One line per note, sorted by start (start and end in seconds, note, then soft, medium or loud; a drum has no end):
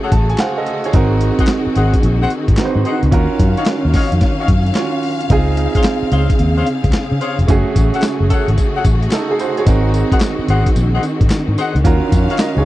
0.00 0.90 C#3 medium
0.00 0.62 A3 medium
0.00 0.92 A3 medium
0.00 0.63 C#4 medium
0.00 0.63 F#4 medium
0.00 3.08 F#4 medium
0.00 0.37 G#4 medium
0.00 3.08 G#4 medium
0.00 0.12 G#4 medium
0.00 0.12 A4 medium
0.00 0.12 C#5 medium
0.00 0.12 F#5 medium
0.12 0.34 A1 medium
0.12 0.29 A5 medium
0.12 kick medium
0.12 closed hi-hat medium
0.30 0.39 G#5 medium
0.30 closed hi-hat soft
0.38 0.57 C5 medium
0.38 0.57 F5 medium
0.38 0.90 F#5 medium
0.38 snare loud
0.38 clap medium
0.38 closed hi-hat medium
0.58 0.83 A4 medium
0.58 0.83 D#5 medium
0.66 closed hi-hat medium
0.84 1.11 G#4 medium
0.84 1.11 C#5 medium
0.84 closed hi-hat medium
0.93 1.30 G#1 medium
0.93 5.26 D#3 medium
0.93 2.54 C4 medium
0.93 3.10 C4 medium
0.93 2.54 D#4 medium
0.93 2.54 F#4 medium
0.93 2.55 A#4 medium
0.93 kick loud
0.93 closed hi-hat medium
1.21 closed hi-hat medium
1.39 1.48 G#4 medium
1.39 1.48 C5 medium
1.39 1.48 D#5 medium
1.39 1.49 F#5 medium
1.39 kick medium
1.39 closed hi-hat medium
1.47 snare loud
1.47 clap medium
1.47 closed hi-hat medium
1.67 muted fingered electric bass stroke soft
1.75 1.90 G#1 medium
1.75 1.93 G#4 medium
1.75 1.94 C5 medium
1.75 1.94 D#5 medium
1.75 1.94 F#5 medium
1.75 closed hi-hat medium
1.94 kick loud
1.94 closed hi-hat medium
2.03 2.25 A#1 loud
2.03 closed hi-hat medium
2.21 2.30 G#4 medium
2.21 2.30 C5 medium
2.21 2.31 D#5 medium
2.21 2.31 F#5 medium
2.30 closed hi-hat medium
2.48 2.56 G#1 medium
2.48 kick medium
2.48 closed hi-hat soft
2.57 3.12 C4 medium
2.57 3.12 D#4 medium
2.57 3.11 F#4 medium
2.57 2.66 B4 soft
2.57 snare loud
2.57 clap medium
2.57 closed hi-hat medium
2.65 3.16 C5 medium
2.76 2.83 G#2 loud
2.85 3.02 G#4 medium
2.85 3.02 C5 medium
2.85 3.03 D#5 medium
2.85 3.03 F#5 medium
2.85 closed hi-hat medium
3.03 3.10 C#2 medium
3.03 closed hi-hat soft
3.11 3.26 D#2 loud
3.11 5.28 F#3 medium
3.11 4.72 C#4 medium
3.11 5.28 C#4 medium
3.11 4.72 F4 medium
3.11 4.73 F#4 medium
3.11 4.73 A#4 medium
3.11 7.44 F5 medium
3.11 kick loud
3.11 closed hi-hat medium
3.39 3.54 F#2 medium
3.39 kick medium
3.39 closed hi-hat medium
3.57 3.66 F#4 medium
3.57 3.66 C#5 medium
3.57 3.67 D#5 medium
3.57 3.67 F5 medium
3.57 closed hi-hat medium
3.66 snare loud
3.66 clap medium
3.66 closed hi-hat medium
3.85 3.92 D#2 medium
3.93 4.12 F#4 medium
3.93 4.12 C#5 medium
3.93 4.12 D#5 medium
3.93 4.12 F5 medium
3.93 kick medium
3.93 snare medium
3.93 open hi-hat medium
4.12 4.19 F2 medium
4.12 closed hi-hat medium
4.21 kick loud
4.21 snare medium
4.21 closed hi-hat medium
4.39 4.48 F#4 medium
4.39 4.49 C#5 medium
4.39 4.49 D#5 medium
4.39 4.49 F5 medium
4.48 4.70 F#2 medium
4.48 kick medium
4.48 closed hi-hat medium
4.66 closed hi-hat soft
4.75 5.30 C#4 medium
4.75 5.30 F4 soft
4.75 5.30 F#4 soft
4.75 5.31 C#5 medium
4.75 snare loud
4.75 clap medium
4.75 closed hi-hat medium
5.03 open hi-hat medium
5.21 closed hi-hat medium
5.30 5.66 C#2 loud
5.30 9.63 C#3 medium
5.30 7.46 C4 medium
5.30 7.44 C4 medium
5.30 7.45 D#4 medium
5.30 7.45 F4 medium
5.30 11.81 G#4 medium
5.30 7.45 G#4 medium
5.30 kick loud
5.30 closed hi-hat medium
5.57 closed hi-hat medium
5.75 5.84 G#4 medium
5.75 5.85 C5 medium
5.75 5.85 C#5 medium
5.75 5.85 F5 medium
5.75 kick medium
5.75 closed hi-hat medium
5.84 snare loud
5.84 clap medium
5.84 closed hi-hat medium
6.03 muted fingered electric bass stroke soft
6.11 6.26 C#2 loud
6.11 6.29 G#4 medium
6.11 6.29 C5 medium
6.11 6.30 C#5 medium
6.11 6.30 F5 medium
6.11 closed hi-hat medium
6.30 kick loud
6.30 closed hi-hat medium
6.39 6.61 D#2 loud
6.39 closed hi-hat medium
6.57 6.66 G#4 medium
6.57 6.66 C5 medium
6.57 6.66 C#5 medium
6.57 6.67 F5 medium
6.66 closed hi-hat medium
6.84 6.92 C#2 medium
6.84 kick medium
6.84 closed hi-hat soft
6.93 snare loud
6.93 clap medium
6.93 closed hi-hat medium
7.12 7.19 C#3 loud
7.21 7.39 G#4 medium
7.21 7.39 C5 medium
7.21 7.39 C#5 medium
7.21 7.39 F5 medium
7.21 closed hi-hat medium
7.39 7.46 F1 medium
7.39 closed hi-hat medium
7.48 7.63 F#1 loud
7.48 9.62 A3 medium
7.48 9.64 A3 medium
7.48 9.63 C#4 medium
7.48 11.81 F#4 medium
7.48 9.09 F#4 medium
7.48 9.10 G#4 medium
7.48 kick loud
7.48 closed hi-hat medium
7.48 tambourine medium
7.76 7.90 A1 medium
7.76 kick medium
7.76 closed hi-hat medium
7.76 tambourine medium
7.94 8.03 G#4 medium
7.94 8.03 A4 medium
7.94 8.03 C#5 medium
7.94 8.03 F#5 medium
7.94 closed hi-hat medium
8.02 snare loud
8.02 clap medium
8.02 closed hi-hat medium
8.02 tambourine medium
8.20 8.28 F#1 medium
8.30 8.48 G#4 medium
8.30 8.48 A4 medium
8.30 8.48 C#5 medium
8.30 8.48 F#5 medium
8.30 kick medium
8.30 closed hi-hat medium
8.48 8.55 G#1 medium
8.48 closed hi-hat medium
8.58 kick medium
8.58 closed hi-hat medium
8.58 tambourine medium
8.75 8.85 G#4 medium
8.75 8.85 A4 medium
8.75 8.85 C#5 medium
8.75 8.85 F#5 medium
8.85 9.06 A1 medium
8.85 kick medium
8.85 closed hi-hat medium
8.85 tambourine medium
9.03 closed hi-hat soft
9.11 9.30 D#4 medium
9.11 9.29 A4 medium
9.11 snare loud
9.11 clap medium
9.11 closed hi-hat medium
9.11 tambourine medium
9.31 9.40 D#4 medium
9.31 9.39 G#4 medium
9.39 9.57 F#4 medium
9.39 9.57 C5 medium
9.39 closed hi-hat medium
9.39 tambourine medium
9.57 9.84 G#4 medium
9.57 9.83 C#5 medium
9.57 closed hi-hat soft
9.66 10.03 G#1 loud
9.66 12.65 D#3 medium
9.66 11.80 C4 medium
9.66 11.83 C4 medium
9.66 11.81 D#4 medium
9.66 11.81 F#4 medium
9.66 11.81 A#4 medium
9.66 kick loud
9.66 closed hi-hat medium
9.66 tambourine medium
9.94 closed hi-hat medium
9.94 tambourine medium
10.12 10.21 G#4 medium
10.12 10.21 C5 medium
10.12 10.21 D#5 medium
10.12 10.21 F#5 medium
10.12 kick loud
10.12 closed hi-hat medium
10.21 snare loud
10.21 clap medium
10.21 closed hi-hat medium
10.21 tambourine loud
10.39 muted fingered electric bass stroke soft
10.48 10.63 G#1 medium
10.48 10.66 G#4 medium
10.48 10.66 C5 medium
10.48 10.66 D#5 medium
10.48 10.67 F#5 medium
10.48 closed hi-hat medium
10.66 kick loud
10.66 closed hi-hat medium
10.76 10.97 A#1 loud
10.76 closed hi-hat medium
10.76 tambourine medium
10.94 11.03 G#4 medium
10.94 11.03 C5 medium
10.94 11.03 D#5 medium
10.94 11.03 F#5 medium
11.03 closed hi-hat medium
11.03 tambourine medium
11.21 11.28 G#1 medium
11.21 kick medium
11.21 closed hi-hat soft
11.30 snare loud
11.30 clap medium
11.30 closed hi-hat medium
11.30 tambourine medium
11.48 11.55 G#2 medium
11.58 11.75 G#4 medium
11.58 11.75 C5 medium
11.58 11.76 D#5 medium
11.58 11.76 F#5 medium
11.58 closed hi-hat medium
11.58 tambourine medium
11.75 11.83 C#2 loud
11.75 closed hi-hat medium
11.84 11.99 D#2 loud
11.84 12.65 F#3 medium
11.84 12.65 C#4 medium
11.84 12.38 F4 medium
11.84 12.39 F#4 medium
11.84 12.39 A#4 medium
11.84 12.65 F5 medium
11.84 kick loud
11.84 closed hi-hat medium
11.84 tambourine medium
12.12 12.26 F2 medium
12.12 kick medium
12.12 closed hi-hat medium
12.12 tambourine medium
12.30 12.39 F#4 medium
12.30 12.39 C#5 medium
12.30 12.40 D#5 medium
12.30 12.40 F5 medium
12.30 closed hi-hat medium
12.38 12.57 A#4 medium
12.38 12.56 D#5 medium
12.38 snare loud
12.38 clap medium
12.38 closed hi-hat medium
12.38 tambourine medium
12.57 12.64 C#2 loud
12.57 12.65 G#4 medium
12.57 12.65 C#5 medium